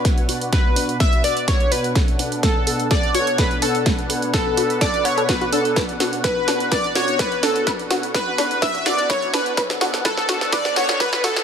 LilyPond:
<<
  \new Staff \with { instrumentName = "Digital synth lead" } { \time 4/4 \key b \minor \tempo 4 = 126 r4 b'4 e''8 d''8 cis''8 b'8 | r4 a'4 d''8 cis''8 b'8 a'8 | r4 a'4 d''8 cis''8 b'8 a'8 | r4 b'4 d''8 cis''8 b'8 a'8 |
r4 b'4 e''8 d''8 cis''8 b'8 | r4 a'4 d''8 cis''8 b'8 a'8 | }
  \new Staff \with { instrumentName = "Synth arpeggio sound" } { \time 4/4 \key b \minor b'16 r16 fis'16 r16 b'16 r16 d'16 r16 b16 r16 b'16 r16 b'16 r16 fis'16 r16 | a'16 r16 d'16 r16 a16 r16 a'16 r16 a'16 r16 fis'16 r16 a'16 r16 d'16 r16 | a16 r16 a'16 r16 a'16 r16 fis'16 r16 a'16 r16 fis''16 a'16 fis'16 fis'16 d'16 r16 | b'16 r16 fis'16 r16 b'16 r16 d'16 r16 b'16 r16 fis'16 r16 b'16 r16 d'16 r16 |
b'16 r16 fis'16 r16 b'16 r16 d'16 r16 b'16 r16 fis'16 r16 b'16 r16 d'16 r16 | b'16 r16 fis'16 r16 b'16 r16 fis'16 r16 b'16 r16 fis'16 r16 b'16 r16 fis'16 r16 | }
  \new Staff \with { instrumentName = "Supersaw synth" } { \time 4/4 \key b \minor << { <b, b d' fis''>1~ | <b, b d' fis''>1~ | <b, b d' fis''>1~ | <b, b d' fis''>1~ |
<b, b d' fis''>1 | <b, b d' fis''>1 | } \\ { fis'1 | a'1 | b'1 | fis'1~ |
fis'1 | a'1 | } >> }
  \new DrumStaff \with { instrumentName = "Drums" } \drummode { \time 4/4 <hh bd sn>16 hh16 hho16 hh16 <hh bd sn>8 hho16 hh16 <hh bd sn>16 hh16 hho16 hh16 <hh bd sn>16 hh16 hho16 hh16 | <hh bd sn>16 hh16 hho16 hh16 <hh bd sn>8 hho16 hh16 <hh bd sn>16 hh16 hho16 hh16 <hh bd sn>16 hh16 hho16 hh16 | <hh bd sn>16 hh16 hho16 hh16 <hh bd sn>8 hho16 hh16 <hh bd sn>16 hh16 hho16 hh16 <hh bd sn>16 hh16 hho16 hh16 | <hh bd sn>16 hh16 <hho sn>16 hh16 <hh bd sn>8 <hho sn>16 hh16 <hh bd sn>16 hh16 <hho sn>16 hh16 <hh bd sn>16 hh16 <hho sn>16 hh16 |
<hh bd sn>16 hh16 <hho sn>16 hh16 <hh bd sn>8 <hho sn>16 hh16 <hh bd sn>16 hh16 <hho sn>16 hh16 <hh bd sn>16 hh16 <hho sn>16 hh16 | <hh bd sn>16 <hh sn>16 <hho sn>16 <hh sn>16 <hh bd sn>16 sn16 <hho sn>16 <hh sn>16 <hh bd sn>16 <hh sn>16 <hho sn>16 <hh sn>16 <hh bd sn>16 <hh sn>16 <hho sn>16 <hh sn>16 | }
>>